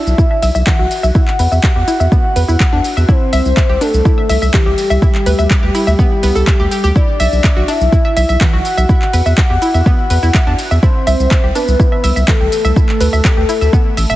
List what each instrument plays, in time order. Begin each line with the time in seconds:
Already playing: soft synth lead E5
0.07 sub bass B1, shaker
0.18 synth arpeggio sound E4, kick, shaker
0.31 synth arpeggio sound E5
0.42 sub bass B1, synth arpeggio sound E5, open hi-hat, shaker
0.55 sub bass B1, synth arpeggio sound E5, shaker
0.67 synth arpeggio sound E3, soft synth lead F#5, kick, clap, shaker
0.79 sub bass B1, synth arpeggio sound F#4
0.91 open hi-hat, shaker
1.03 sub bass B1, synth arpeggio sound E5, shaker
1.15 synth arpeggio sound E4, kick, shaker
1.28 clap
1.39 sub bass E2, synth arpeggio sound B4, open hi-hat, shaker
1.52 sub bass E2, synth arpeggio sound E5, shaker
1.63 synth arpeggio sound G4, kick, clap, shaker
1.76 sub bass E2, synth arpeggio sound G4
1.88 synth arpeggio sound E4, open hi-hat, shaker
2.00 sub bass E2, synth arpeggio sound E5, shaker
2.12 synth arpeggio sound B3, kick, shaker
2.36 sub bass E2, synth arpeggio sound B4, open hi-hat, shaker
2.48 sub bass E2, synth arpeggio sound E4, shaker
2.60 synth arpeggio sound E5, kick, clap, shaker
2.73 sub bass E2, synth arpeggio sound D4
2.84 open hi-hat, shaker
2.97 sub bass E2, synth arpeggio sound E5, shaker
3.09 synth arpeggio sound E4, soft synth lead C5, kick, shaker
3.33 sub bass C2, synth arpeggio sound E5, open hi-hat, shaker
3.45 sub bass C2, shaker
3.57 synth arpeggio sound E5, kick, clap, shaker
3.69 sub bass C2, synth arpeggio sound G4
3.81 synth arpeggio sound D4, soft synth lead A4, open hi-hat, shaker
3.94 sub bass C2, shaker
4.05 synth arpeggio sound E4, kick, shaker
4.18 synth arpeggio sound E5
4.29 sub bass C2, synth arpeggio sound E5, open hi-hat, shaker
4.42 sub bass C2, synth arpeggio sound E5, shaker
4.54 synth arpeggio sound E3, soft synth lead G4, kick, clap, shaker
4.66 sub bass C2, synth arpeggio sound G4
4.78 open hi-hat, shaker
4.90 sub bass C2, synth arpeggio sound E5, shaker
5.02 synth arpeggio sound E4, kick, shaker
5.15 clap
5.26 sub bass D2, synth arpeggio sound B4, open hi-hat, shaker
5.39 sub bass D2, synth arpeggio sound E5, shaker
5.50 synth arpeggio sound G4, kick, clap, shaker
5.63 sub bass D2, synth arpeggio sound G4
5.75 synth arpeggio sound E4, open hi-hat, shaker
5.87 sub bass D2, synth arpeggio sound E5, shaker
5.99 synth arpeggio sound B3, kick, shaker
6.23 sub bass C2, synth arpeggio sound B3, open hi-hat, shaker
6.35 sub bass C2, synth arpeggio sound A4, shaker
6.47 synth arpeggio sound E5, kick, clap, shaker
6.60 sub bass D2, synth arpeggio sound G4
6.71 synth arpeggio sound G4, open hi-hat, shaker
6.84 sub bass D2, synth arpeggio sound G4, shaker
6.96 synth arpeggio sound E4, soft synth lead D5, kick, shaker
7.20 sub bass B1, synth arpeggio sound E5, open hi-hat, shaker
7.32 sub bass B1, shaker
7.44 synth arpeggio sound E5, kick, clap, shaker
7.56 sub bass B1, synth arpeggio sound F#4
7.68 synth arpeggio sound D4, soft synth lead E5, open hi-hat, shaker
7.81 sub bass B1, shaker
7.92 synth arpeggio sound E4, kick, shaker
8.05 synth arpeggio sound E5
8.17 sub bass B1, synth arpeggio sound E5, open hi-hat, shaker
8.29 sub bass B1, synth arpeggio sound E5, shaker
8.41 synth arpeggio sound E3, soft synth lead F#5, kick, clap, shaker
8.53 sub bass B1, synth arpeggio sound F#4
8.65 open hi-hat, shaker
8.77 sub bass B1, synth arpeggio sound E5, shaker
8.89 synth arpeggio sound E4, kick, shaker
9.02 clap
9.13 sub bass E2, synth arpeggio sound B4, open hi-hat, shaker
9.26 sub bass E2, synth arpeggio sound E5, shaker
9.38 synth arpeggio sound G4, kick, clap, shaker
9.50 sub bass E2, synth arpeggio sound G4
9.62 synth arpeggio sound E4, open hi-hat, shaker
9.74 sub bass E2, synth arpeggio sound E5, shaker
9.86 synth arpeggio sound B3, kick, shaker
10.10 sub bass E2, synth arpeggio sound B4, open hi-hat, shaker
10.23 sub bass E2, synth arpeggio sound E4, shaker
10.34 synth arpeggio sound E5, kick, clap, shaker
10.47 sub bass E2, synth arpeggio sound D4
10.59 open hi-hat, shaker
10.71 sub bass E2, synth arpeggio sound E5, shaker
10.83 synth arpeggio sound E4, soft synth lead C5, kick, shaker
11.07 sub bass C2, synth arpeggio sound E5, open hi-hat, shaker
11.19 sub bass C2, shaker
11.31 synth arpeggio sound E5, kick, clap, shaker
11.44 sub bass C2, synth arpeggio sound G4
11.55 synth arpeggio sound D4, soft synth lead B4, open hi-hat, shaker
11.68 sub bass C2, shaker
11.80 synth arpeggio sound E4, kick, shaker
11.92 synth arpeggio sound E5
12.04 sub bass C2, synth arpeggio sound E5, open hi-hat, shaker
12.16 sub bass C2, synth arpeggio sound E5, shaker
12.28 synth arpeggio sound E3, soft synth lead A4, kick, clap, shaker
12.40 sub bass C2, synth arpeggio sound G4
12.52 open hi-hat, shaker
12.65 sub bass C2, synth arpeggio sound E5, shaker
12.76 synth arpeggio sound E4, kick, shaker
12.89 clap
13.01 sub bass D2, synth arpeggio sound B4, open hi-hat, shaker
13.13 sub bass D2, synth arpeggio sound E5, shaker
13.25 synth arpeggio sound G4, kick, clap, shaker
13.37 sub bass D2, synth arpeggio sound G4
13.49 synth arpeggio sound E4, open hi-hat, shaker
13.61 sub bass D2, synth arpeggio sound E5, shaker
13.73 synth arpeggio sound B3, kick, shaker
13.97 sub bass A1, synth arpeggio sound E5, open hi-hat, shaker
14.10 sub bass D1, synth arpeggio sound E5, shaker